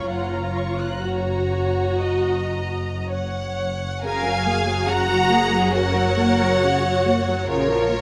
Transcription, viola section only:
0.06 F4
1.02 F#4
4.04 C#3 F#4
4.25 F#3
4.47 A#3
4.67 F#3
4.88 C#3
5.10 F#3
5.31 A#3
5.52 F#3
5.74 C#3
5.95 F#3
6.18 A#3
6.40 F#3
6.63 C#3
6.84 F#3
7.06 A#3
7.27 F#3
7.49 C#3
7.69 F3
7.91 A#3

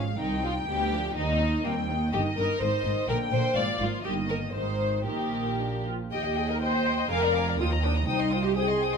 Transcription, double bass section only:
Already playing: G#1
0.19 C2
0.68 D2
1.17 D#2
1.65 D#2
2.13 G1
2.38 G1
2.61 G#1
2.85 G#1
3.08 A#1
3.32 A#1
3.56 G#1
3.80 G#1
4.05 G1
4.54 G#1
5.06 A#1
6.11 D#2
7.11 F1
7.60 D#2
8.08 C2

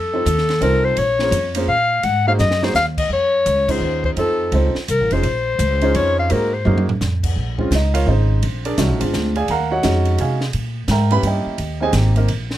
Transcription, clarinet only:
Already playing: A4
0.63 A#4
0.85 C5
0.99 C#5
1.69 F5
2.04 F#5
2.28 F5
2.40 D#5
2.65 C5
2.76 F5
2.99 D#5
3.13 C#5
3.71 C5
4.05 C5
4.19 A4
4.91 A#4
5.13 C5
5.96 C#5
6.19 F5
6.32 A#4
6.54 C5

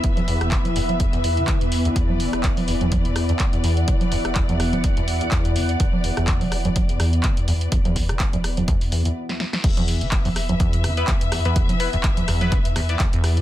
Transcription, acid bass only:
0.17 E2
0.28 E2
0.52 D3
0.76 E2
1.00 E2
1.13 E2
1.24 E2
1.37 D3
1.61 E2
1.85 D2
1.96 E2
2.20 D3
2.44 E2
2.68 E2
2.81 E2
3.05 D3
3.29 E2
3.53 E2
3.64 E2
3.88 D3
4.12 E2
4.36 E2
4.49 E2
4.73 D3
4.97 E2
5.21 E2
5.32 E2
5.56 D3
5.80 E2
6.04 E2
6.17 E2
6.41 D3
6.65 E2
6.89 E2
7.00 E2
7.24 D3
7.48 E2
7.72 E2
7.85 E2
8.09 D3
8.33 E2
8.57 E2
8.68 E2
8.92 E2
9.05 E2
9.64 E2
9.77 E2
10.01 D3
10.25 E2
10.49 E2
10.60 E2
10.84 D3
11.08 E2
11.32 E2
11.45 E2
11.69 D3
11.93 E2
12.17 E2
12.28 E2
12.52 D3
12.76 E2
13.00 E2
13.13 E2
13.37 D3

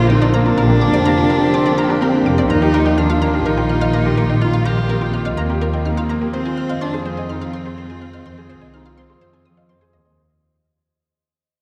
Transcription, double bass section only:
Already playing: A#1
0.57 A#1
0.93 F1
2.26 F1
2.50 D#2
3.46 A#1
5.38 D#2
6.70 F2
8.25 F2
8.61 C2
9.21 F2
9.94 D#2
10.06 D#2

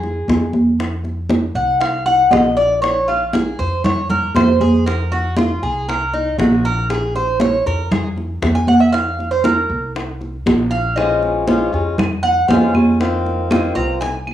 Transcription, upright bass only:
Already playing: F2
0.28 F2
1.55 C2
2.32 A#1
3.59 F2
4.35 F2
5.63 C2
6.39 A#1
7.66 F2
8.43 F2
9.70 C2
10.47 A#1
11.73 F2
12.49 F2
13.75 C2

